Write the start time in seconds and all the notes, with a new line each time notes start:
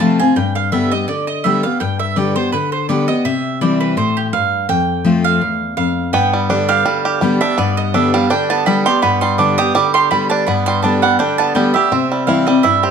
Already playing: C3
0.00 F3 A3 C4 F4 A5
0.20 C4 F4 G#5
0.36 G2 G5
0.55 F5
0.72 D3 G3 B3 G4 E5
0.92 B3 G4 D#5
1.08 D3 D5
1.27 D#5
1.44 D3 G3 B3 G4 E5
1.63 B3 G4 F5
1.80 G2 G5
1.99 E5
2.16 D3 G3 B3 G4 D5
2.36 B3 G4 C5
2.52 D3 B4
2.72 C5
2.89 D3 G3 B3 G4 D5
3.08 B3 G4 D#5
3.25 C3 E5
3.61 E3 G3 C4 E4 D5
3.81 B4
3.97 A2 C5
4.17 G4
4.33 G2 F5
4.69 F2 G5
5.04 F3 A3 C4 F4
5.24 F5
5.41 E2
5.77 F2 F5
6.13 G2 B3 G5
6.33 G3
6.49 D3 G3 B3 D4 G4
6.69 G4 F5
6.85 D3 G3
7.05 G4
7.21 D3 G3 B3 G4
7.41 B3 D4 G4 E5
7.58 G2 B3 D5
7.77 D#5
7.94 D3 G3 B3 D4 G4 E5
8.14 G3 B3 G4 F5
8.30 D3 D4 G5
8.50 B3 A5
8.66 D3 G3 B3 G4 B5
8.85 B3 G4 C6
9.02 G2 B3 B5
9.21 G3 C6
9.38 D3 G3 B3 D4 G4 D6
9.58 B3 G4 D#6
9.75 D3 G3 D6
9.94 G4 C6
10.11 D3 G3 B3 G4 B5
10.30 D4 A5
10.47 G2 B3 B5
10.66 G3 C6
10.83 D3 G3 B3 D4 G4 A5
11.02 G3 B3 G4 F#5
11.19 D3 D4 G5
11.38 B3 A5
11.55 D3 G3 B3 G4 G5
11.74 B3 G4 E5
11.92 C3 C4
12.12 G3
12.27 E3 G3 C4 E4 F5
12.47 G3 C4 E4 D#5
12.63 G2 E4 E5
12.83 C4 G4